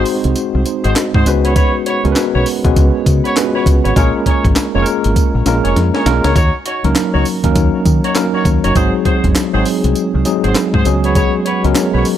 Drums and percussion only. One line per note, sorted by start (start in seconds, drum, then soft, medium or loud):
0.05 open hi-hat medium
0.05 tambourine medium
0.24 closed hi-hat medium
0.35 closed hi-hat medium
0.35 tambourine medium
0.66 closed hi-hat medium
0.66 tambourine medium
0.84 closed hi-hat soft
0.96 snare loud
0.96 clap loud
0.96 closed hi-hat medium
0.96 tambourine medium
1.14 kick loud
1.26 closed hi-hat medium
1.26 tambourine medium
1.45 closed hi-hat medium
1.56 kick loud
1.56 closed hi-hat medium
1.56 tambourine medium
1.86 closed hi-hat medium
2.05 closed hi-hat soft
2.16 snare loud
2.16 clap medium
2.16 closed hi-hat medium
2.16 tambourine loud
2.46 open hi-hat medium
2.46 tambourine medium
2.65 kick loud
2.65 closed hi-hat medium
2.76 kick loud
2.76 closed hi-hat medium
2.76 tambourine medium
3.06 kick medium
3.06 closed hi-hat medium
3.06 tambourine medium
3.25 closed hi-hat medium
3.37 snare loud
3.37 clap loud
3.37 closed hi-hat medium
3.37 tambourine medium
3.66 kick loud
3.66 closed hi-hat medium
3.66 tambourine medium
3.85 closed hi-hat medium
3.96 kick loud
3.96 closed hi-hat medium
3.96 tambourine medium
4.26 kick medium
4.26 closed hi-hat medium
4.45 kick medium
4.45 closed hi-hat soft
4.56 snare loud
4.56 clap loud
4.56 closed hi-hat medium
4.56 tambourine loud
4.86 closed hi-hat medium
4.86 tambourine medium
5.04 closed hi-hat medium
5.16 kick loud
5.16 closed hi-hat medium
5.16 tambourine medium
5.46 snare medium
5.46 closed hi-hat medium
5.46 tambourine medium
5.65 closed hi-hat medium
5.76 snare medium
5.76 closed hi-hat medium
5.95 snare medium
6.06 snare loud
6.06 closed hi-hat medium
6.24 snare loud
6.24 closed hi-hat medium
6.36 kick loud
6.36 closed hi-hat medium
6.36 tambourine medium
6.66 closed hi-hat medium
6.84 closed hi-hat medium
6.96 snare loud
6.96 clap medium
6.96 closed hi-hat medium
6.96 tambourine loud
7.25 open hi-hat medium
7.25 tambourine medium
7.44 kick medium
7.44 closed hi-hat medium
7.55 kick loud
7.55 closed hi-hat medium
7.55 tambourine medium
7.85 kick medium
7.85 closed hi-hat medium
7.85 tambourine medium
8.04 closed hi-hat medium
8.15 snare loud
8.15 clap medium
8.15 closed hi-hat medium
8.15 tambourine medium
8.45 kick loud
8.45 closed hi-hat medium
8.45 tambourine medium
8.64 closed hi-hat medium
8.75 kick loud
8.75 closed hi-hat medium
8.75 tambourine medium
9.05 kick medium
9.05 closed hi-hat medium
9.24 kick medium
9.24 closed hi-hat soft
9.35 snare loud
9.35 clap medium
9.35 closed hi-hat medium
9.35 tambourine loud
9.65 open hi-hat medium
9.65 tambourine medium
9.84 closed hi-hat medium
9.95 closed hi-hat medium
9.95 tambourine medium
10.25 closed hi-hat medium
10.25 tambourine medium
10.44 closed hi-hat medium
10.55 snare loud
10.55 clap loud
10.55 closed hi-hat medium
10.55 tambourine medium
10.74 kick medium
10.85 closed hi-hat medium
10.85 tambourine medium
11.04 closed hi-hat medium
11.15 kick loud
11.15 closed hi-hat medium
11.15 tambourine medium
11.46 closed hi-hat medium
11.64 closed hi-hat soft
11.75 snare loud
11.75 clap medium
11.75 closed hi-hat medium
11.75 tambourine loud
12.05 open hi-hat medium
12.05 tambourine medium